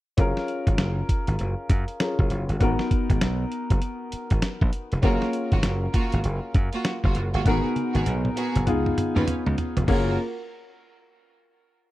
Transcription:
0.17 0.32 F#1 loud
0.17 1.96 C#4 medium
0.17 1.96 F4 medium
0.17 1.97 G#4 medium
0.17 1.97 A#4 medium
0.17 kick loud
0.17 closed hi-hat medium
0.37 snare medium
0.48 closed hi-hat medium
0.67 0.76 G#1 medium
0.67 kick loud
0.67 closed hi-hat soft
0.78 1.01 F#1 loud
0.78 snare loud
0.78 closed hi-hat medium
1.09 kick medium
1.09 closed hi-hat medium
1.27 1.36 G#1 medium
1.27 closed hi-hat medium
1.39 1.54 F#1 medium
1.39 closed hi-hat medium
1.69 1.84 F#2 medium
1.69 kick medium
1.69 closed hi-hat medium
1.88 closed hi-hat soft
2.00 2.60 C#4 medium
2.00 2.61 F4 soft
2.00 2.61 G#4 soft
2.00 2.61 A#4 medium
2.00 snare loud
2.00 closed hi-hat medium
2.19 2.27 F#1 medium
2.19 kick medium
2.30 2.44 F#1 medium
2.30 closed hi-hat medium
2.49 2.58 G1 medium
2.49 closed hi-hat soft
2.60 2.75 G#1 loud
2.60 4.99 B3 medium
2.60 4.99 D#4 medium
2.60 4.99 F#4 medium
2.60 5.00 A#4 medium
2.60 kick loud
2.60 closed hi-hat medium
2.79 snare medium
2.91 kick loud
2.91 closed hi-hat medium
3.10 3.18 G#1 medium
3.10 kick medium
3.10 closed hi-hat medium
3.21 3.44 B1 medium
3.21 snare loud
3.21 closed hi-hat medium
3.52 closed hi-hat medium
3.70 3.79 F#1 medium
3.70 kick medium
3.70 closed hi-hat medium
3.82 closed hi-hat medium
4.12 muted slap bass stroke soft
4.12 closed hi-hat medium
4.30 4.40 G#1 medium
4.30 kick medium
4.30 closed hi-hat soft
4.42 snare loud
4.42 closed hi-hat medium
4.61 4.70 A#1 loud
4.61 kick medium
4.73 closed hi-hat medium
4.92 5.01 F1 medium
4.92 closed hi-hat soft
5.02 5.17 F#1 loud
5.02 5.21 A#3 medium
5.02 7.41 C#4 medium
5.02 7.41 F4 medium
5.02 5.21 F4 medium
5.02 5.21 F#4 loud
5.02 7.42 G#4 medium
5.02 7.42 A#4 medium
5.02 kick loud
5.02 closed hi-hat medium
5.22 snare medium
5.33 closed hi-hat medium
5.52 5.61 G#1 medium
5.52 5.63 A#3 medium
5.52 5.63 F4 medium
5.52 5.63 F#4 medium
5.52 kick medium
5.52 closed hi-hat soft
5.63 5.87 F#1 medium
5.63 snare loud
5.63 closed hi-hat medium
5.94 6.12 A#3 medium
5.94 6.12 F4 medium
5.94 6.12 F#4 medium
5.94 kick medium
5.94 closed hi-hat medium
6.12 6.22 G#1 medium
6.12 closed hi-hat medium
6.24 6.38 F#1 loud
6.24 closed hi-hat medium
6.54 6.69 F#2 medium
6.54 kick loud
6.54 closed hi-hat medium
6.73 6.84 A#3 medium
6.73 6.84 F4 medium
6.73 6.84 F#4 medium
6.73 closed hi-hat medium
6.85 snare loud
6.85 closed hi-hat medium
7.03 7.12 F#1 medium
7.03 7.14 A#3 medium
7.03 7.15 F4 medium
7.03 7.15 F#4 medium
7.03 kick medium
7.15 7.29 F#1 medium
7.15 closed hi-hat medium
7.34 7.42 G1 medium
7.34 7.45 A#3 medium
7.34 7.45 F4 medium
7.34 7.45 F#4 medium
7.34 closed hi-hat soft
7.45 7.60 G#1 loud
7.45 8.64 B3 medium
7.45 7.63 B3 medium
7.45 8.65 D#4 medium
7.45 7.64 F#4 medium
7.45 8.65 F#4 medium
7.45 7.64 G#4 loud
7.45 8.65 A#4 medium
7.45 kick loud
7.45 closed hi-hat medium
7.45 high tom soft
7.64 high tom soft
7.76 closed hi-hat medium
7.76 high tom medium
7.94 8.03 G#1 medium
7.94 8.05 B3 medium
7.94 8.05 F#4 medium
7.94 8.06 G#4 medium
7.94 closed hi-hat soft
7.94 high tom medium
8.06 8.29 B1 loud
8.06 closed hi-hat medium
8.06 mid tom medium
8.25 mid tom medium
8.36 8.54 B3 medium
8.36 8.54 F#4 medium
8.36 8.54 G#4 medium
8.36 closed hi-hat medium
8.55 8.68 F#1 medium
8.55 closed hi-hat medium
8.55 mid tom medium
8.66 8.89 C#2 medium
8.66 9.85 B3 medium
8.66 9.85 D#4 medium
8.66 9.86 F4 medium
8.66 9.86 G#4 medium
8.66 closed hi-hat medium
8.66 mid tom medium
8.86 mid tom medium
8.97 muted slap bass stroke soft
8.97 closed hi-hat medium
8.97 mid tom medium
9.15 9.24 D#2 medium
9.15 9.26 C#4 medium
9.15 9.27 F4 medium
9.15 9.27 B4 medium
9.15 closed hi-hat soft
9.15 mid tom medium
9.27 muted slap bass stroke soft
9.27 closed hi-hat medium
9.27 floor tom medium
9.46 9.55 C#2 medium
9.46 floor tom medium
9.58 closed hi-hat medium
9.58 floor tom medium
9.77 9.85 F1 medium
9.77 closed hi-hat soft
9.77 floor tom medium
9.88 10.16 F#1 medium
9.88 10.16 A#3 medium
9.88 10.16 C#4 medium
9.88 10.12 F4 medium
9.88 10.16 F4 medium
9.88 10.12 F#4 medium
9.88 10.16 G#4 medium
9.88 10.12 A#4 loud
9.88 kick medium
9.88 crash medium

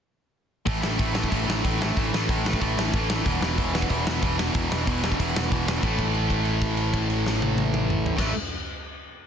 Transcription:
0.66 0.80 A1 medium
0.66 0.83 A2 medium
0.66 0.83 E3 medium
0.66 0.81 A3 medium
0.66 kick loud
0.66 open hi-hat medium
0.82 0.97 A1 medium
0.82 0.98 A2 medium
0.82 0.98 E3 medium
0.82 0.99 A3 medium
0.82 snare loud
0.98 1.26 A1 medium
0.98 1.15 A2 medium
0.98 1.15 E3 medium
0.98 1.15 A3 medium
0.98 kick loud
0.98 open hi-hat medium
1.15 1.29 A2 medium
1.15 1.31 E3 medium
1.15 1.30 A3 medium
1.15 snare loud
1.24 kick medium
1.31 1.45 A1 medium
1.31 1.47 A2 medium
1.31 1.47 E3 loud
1.31 1.46 A3 loud
1.31 kick loud
1.31 open hi-hat medium
1.47 1.61 A1 medium
1.47 1.63 A2 medium
1.47 1.65 E3 medium
1.47 1.64 A3 loud
1.47 snare loud
1.64 1.91 A1 medium
1.64 1.81 A2 medium
1.64 1.82 E3 medium
1.64 1.80 A3 medium
1.64 kick loud
1.64 open hi-hat medium
1.81 1.96 A2 medium
1.81 1.98 E3 medium
1.81 1.97 A3 medium
1.81 snare loud
1.97 2.10 A1 medium
1.97 2.14 A2 medium
1.97 2.13 E3 medium
1.97 2.12 A3 medium
1.97 kick loud
1.97 open hi-hat medium
2.13 2.26 A1 medium
2.13 2.28 A2 medium
2.13 2.30 E3 medium
2.13 2.30 A3 loud
2.13 snare loud
2.29 2.55 A1 medium
2.29 2.45 A2 medium
2.29 2.45 E3 medium
2.29 2.44 A3 medium
2.29 kick loud
2.29 open hi-hat medium
2.45 2.59 A2 medium
2.45 2.60 E3 medium
2.45 2.60 A3 loud
2.45 snare loud
2.53 kick medium
2.60 2.75 A1 medium
2.60 2.77 A2 medium
2.60 2.78 E3 medium
2.60 2.76 A3 loud
2.60 kick medium
2.60 open hi-hat medium
2.77 2.91 A1 medium
2.77 2.93 A2 medium
2.77 2.94 E3 medium
2.77 2.94 A3 loud
2.77 snare loud
2.94 3.20 A1 medium
2.94 3.09 A2 medium
2.94 3.10 E3 medium
2.94 3.08 A3 loud
2.94 kick loud
2.94 open hi-hat soft
3.10 3.25 A2 medium
3.10 3.26 E3 medium
3.10 3.25 A3 medium
3.10 snare loud
3.26 3.39 E1 medium
3.26 3.43 E2 medium
3.26 3.41 B2 medium
3.26 3.42 E3 loud
3.26 kick loud
3.26 open hi-hat soft
3.41 3.54 E1 medium
3.41 3.57 E2 medium
3.41 3.57 B2 medium
3.41 3.59 E3 medium
3.41 snare loud
3.58 3.84 E1 medium
3.58 3.75 E2 medium
3.58 3.73 B2 loud
3.58 3.74 E3 loud
3.58 kick loud
3.58 open hi-hat medium
3.74 3.88 E2 medium
3.74 3.89 B2 medium
3.74 3.90 E3 loud
3.74 snare loud
3.82 kick medium
3.89 4.04 E1 loud
3.89 4.06 E2 loud
3.89 4.05 B2 medium
3.89 4.05 E3 loud
3.89 kick medium
3.89 open hi-hat medium
4.06 4.19 E1 medium
4.06 4.21 E2 medium
4.06 4.22 B2 loud
4.06 4.23 E3 loud
4.06 snare loud
4.22 4.48 E1 medium
4.22 4.38 E2 medium
4.22 4.38 B2 medium
4.22 4.37 E3 loud
4.22 kick loud
4.22 open hi-hat medium
4.38 4.52 E2 medium
4.38 4.53 B2 medium
4.38 4.53 E3 medium
4.38 snare loud
4.53 4.68 E1 medium
4.53 4.70 E2 medium
4.53 4.70 B2 loud
4.53 4.69 E3 loud
4.53 kick loud
4.53 open hi-hat medium
4.70 4.84 E1 medium
4.70 4.85 E2 medium
4.70 4.85 B2 medium
4.70 4.85 E3 medium
4.70 snare loud
4.86 5.13 E1 medium
4.86 5.03 E2 medium
4.86 5.02 B2 medium
4.86 5.02 E3 medium
4.86 kick loud
4.86 open hi-hat medium
5.03 5.18 E2 medium
5.03 5.19 B2 medium
5.03 5.19 E3 medium
5.03 snare loud
5.12 kick medium
5.19 5.32 E1 loud
5.19 5.35 E2 medium
5.19 5.35 B2 loud
5.19 5.34 E3 medium
5.19 kick medium
5.19 open hi-hat medium
5.35 5.48 E1 medium
5.35 5.50 E2 medium
5.35 5.50 B2 medium
5.35 5.51 E3 loud
5.35 snare loud
5.51 5.77 E1 medium
5.51 5.67 E2 medium
5.51 5.66 B2 medium
5.51 5.65 E3 medium
5.51 kick loud
5.51 open hi-hat medium
5.67 5.82 E2 medium
5.67 5.81 B2 medium
5.67 5.81 E3 medium
5.67 snare loud
5.82 8.10 A1 medium
5.82 8.16 A2 medium
5.82 8.18 E3 medium
5.82 kick medium
5.82 crash medium
5.86 8.20 A3 loud
5.98 kick medium
5.98 crash soft
6.14 crash soft
6.30 kick medium
6.30 crash soft
6.45 crash soft
6.61 kick medium
6.61 crash soft
6.77 crash soft
6.94 kick medium
6.94 crash medium
7.10 crash medium
7.26 snare medium
7.42 high tom medium
7.58 high tom medium
7.74 mid tom medium
7.90 mid tom loud
8.06 floor tom medium
8.16 8.31 A1 medium
8.16 8.31 A2 medium
8.16 8.32 E3 medium
8.16 kick loud
8.16 snare medium
8.16 crash loud
8.20 8.33 A3 medium

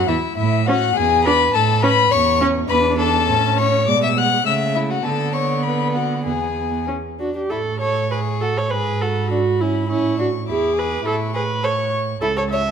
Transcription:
0.08 0.17 E2 medium
0.08 0.17 E3 medium
0.08 0.37 E4 medium
0.08 0.37 E5 medium
0.38 0.87 A2 medium
0.38 0.67 E4 medium
0.38 0.68 E5 medium
0.67 0.81 C#4 medium
0.67 0.95 F#4 medium
0.67 0.98 F#5 medium
0.96 1.44 E2 medium
0.96 1.27 G#4 medium
0.96 1.24 G#5 loud
1.25 1.39 D4 medium
1.25 1.56 B4 medium
1.25 1.53 B5 loud
1.53 2.01 A2 medium
1.53 1.84 A4 medium
1.53 1.81 A5 medium
1.82 1.96 C#4 medium
1.82 2.13 B4 medium
1.82 2.13 B5 loud
2.11 2.60 E2 medium
2.11 2.40 C#5 medium
2.11 2.40 C#6 medium
2.41 2.54 C#4 medium
2.69 3.31 E2 medium
2.69 3.25 D4 medium
2.69 2.96 B4 medium
2.69 2.77 B5 medium
2.99 3.57 A4 medium
2.99 3.60 A5 loud
3.29 3.89 A2 medium
3.29 3.84 C#4 medium
3.58 3.90 C#5 medium
3.58 3.86 C#6 medium
3.87 4.45 B2 medium
3.87 4.42 G#3 medium
3.87 4.02 D5 medium
3.87 4.02 D6 medium
4.03 4.09 E5 medium
4.03 4.19 E6 medium
4.17 4.45 F#5 medium
4.17 4.45 F#6 medium
4.46 5.03 C#3 medium
4.46 5.00 A3 medium
4.46 4.78 E5 medium
4.46 4.54 E6 medium
4.75 4.92 E4 medium
4.75 4.81 E5 medium
4.90 5.07 F#4 medium
4.90 5.04 F#5 medium
5.03 6.27 D3 medium
5.03 6.77 B3 medium
5.03 5.34 A4 medium
5.03 5.35 A5 medium
5.33 5.64 C#5 medium
5.33 5.64 C#6 medium
5.63 5.97 B4 soft
5.63 5.92 B5 medium
5.93 6.25 F#4 soft
5.93 6.23 F#5 medium
6.24 7.30 E2 soft
6.24 6.87 G#4 soft
6.24 6.86 G#5 soft
6.88 6.96 C#4 soft
7.19 7.34 D4 soft
7.19 7.34 F#4 soft
7.35 7.41 D4 soft
7.35 7.52 G4 soft
7.50 8.73 A2 soft
7.50 7.58 E4 soft
7.50 7.80 A4 medium
7.50 8.67 C#6 soft
7.80 8.11 A4 medium
7.80 8.10 C#5 medium
8.12 8.43 G#4 medium
8.12 8.20 B4 medium
8.41 8.59 F#4 soft
8.41 8.59 A4 medium
8.57 8.71 A4 soft
8.57 8.72 C#5 medium
8.70 9.91 G#2 medium
8.70 9.03 G#4 medium
8.70 9.03 B4 medium
8.70 9.91 B5 soft
9.01 9.30 F#4 soft
9.01 9.30 A4 medium
9.31 9.39 D4 medium
9.31 9.62 F#4 medium
9.60 9.88 C#4 soft
9.60 9.88 E4 medium
9.89 10.50 A2 soft
9.89 10.17 C#4 medium
9.89 10.18 E4 medium
9.89 10.48 C#6 soft
10.18 10.26 D4 soft
10.18 10.28 F#4 medium
10.47 11.06 E2 soft
10.47 10.75 E4 medium
10.47 10.80 G#4 medium
10.47 11.07 D6 soft
10.76 11.04 G#4 medium
10.76 11.06 B4 medium
11.04 12.20 A2 medium
11.04 11.33 E4 medium
11.04 11.14 A4 medium
11.04 11.64 C#6 soft
11.34 11.42 G#4 medium
11.34 11.65 B4 medium
11.63 11.71 A4 medium
11.63 11.93 C#5 medium
11.63 12.22 C#6 medium
12.22 12.71 C#2 medium
12.22 12.28 E4 medium
12.22 12.35 A4 medium
12.22 12.71 A5 medium
12.37 12.43 A4 medium
12.37 12.43 C#5 medium
12.51 12.60 C#5 medium
12.51 12.71 E5 medium

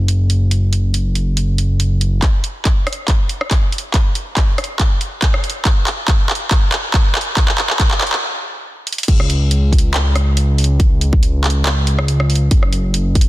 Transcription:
0.00 2.21 F#1 medium
0.08 closed hi-hat medium
0.30 closed hi-hat medium
0.51 closed hi-hat medium
0.73 closed hi-hat medium
0.94 closed hi-hat medium
1.15 closed hi-hat medium
1.37 closed hi-hat medium
1.58 closed hi-hat medium
1.80 closed hi-hat medium
2.01 closed hi-hat medium
2.22 kick medium
2.22 clap soft
2.22 closed hi-hat medium
2.44 closed hi-hat medium
2.65 kick loud
2.65 clap soft
2.65 closed hi-hat medium
2.87 cross-stick medium
2.87 closed hi-hat soft
2.93 closed hi-hat medium
3.08 kick medium
3.08 clap medium
3.08 closed hi-hat medium
3.29 closed hi-hat medium
3.41 cross-stick medium
3.51 kick loud
3.51 clap medium
3.51 closed hi-hat medium
3.72 closed hi-hat medium
3.78 closed hi-hat medium
3.94 kick loud
3.94 clap medium
3.94 closed hi-hat medium
4.15 closed hi-hat medium
4.37 kick loud
4.37 clap medium
4.37 closed hi-hat medium
4.58 cross-stick medium
4.58 closed hi-hat medium
4.64 closed hi-hat medium
4.79 kick medium
4.79 clap medium
4.79 closed hi-hat medium
5.01 closed hi-hat medium
5.22 kick loud
5.22 clap medium
5.22 closed hi-hat medium
5.34 cross-stick medium
5.44 closed hi-hat medium
5.50 closed hi-hat medium
5.65 kick loud
5.65 clap medium
5.65 closed hi-hat medium
5.87 clap medium
5.87 closed hi-hat medium
6.08 kick loud
6.08 clap medium
6.08 closed hi-hat medium
6.30 clap medium
6.30 closed hi-hat soft
6.35 closed hi-hat medium
6.51 kick loud
6.51 clap medium
6.51 closed hi-hat medium
6.72 clap medium
6.72 closed hi-hat medium
6.94 kick loud
6.94 clap medium
6.94 closed hi-hat medium
7.15 clap medium
7.15 closed hi-hat medium
7.21 closed hi-hat medium
7.37 kick loud
7.37 clap medium
7.37 closed hi-hat medium
7.48 clap medium
7.58 clap medium
7.58 closed hi-hat medium
7.70 clap medium
7.80 kick loud
7.80 clap medium
7.80 closed hi-hat medium
7.91 clap medium
8.01 clap loud
8.01 closed hi-hat soft
8.07 closed hi-hat medium
8.13 clap medium
8.87 closed hi-hat medium
8.93 closed hi-hat medium
8.98 closed hi-hat medium
9.03 closed hi-hat medium
9.08 12.49 C#2 medium
9.08 kick loud
9.08 closed hi-hat medium
9.08 crash loud
9.20 cross-stick medium
9.30 closed hi-hat medium
9.51 closed hi-hat medium
9.73 kick medium
9.73 closed hi-hat soft
9.79 closed hi-hat medium
9.94 clap loud
9.94 closed hi-hat medium
10.16 cross-stick medium
10.16 closed hi-hat medium
10.37 closed hi-hat medium
10.58 open hi-hat medium
10.64 closed hi-hat medium
10.80 kick loud
10.80 closed hi-hat medium
11.01 closed hi-hat medium
11.13 kick loud
11.23 closed hi-hat medium
11.44 clap medium
11.44 closed hi-hat medium
11.50 closed hi-hat medium
11.66 clap loud
11.66 closed hi-hat medium
11.87 closed hi-hat medium
11.99 cross-stick medium
12.08 closed hi-hat medium
12.20 cross-stick medium
12.30 open hi-hat medium
12.35 closed hi-hat medium
12.51 13.29 F#1 medium
12.51 kick loud
12.51 closed hi-hat medium
12.63 cross-stick medium
12.73 closed hi-hat medium
12.94 closed hi-hat medium
13.15 kick medium
13.15 closed hi-hat soft
13.21 closed hi-hat medium

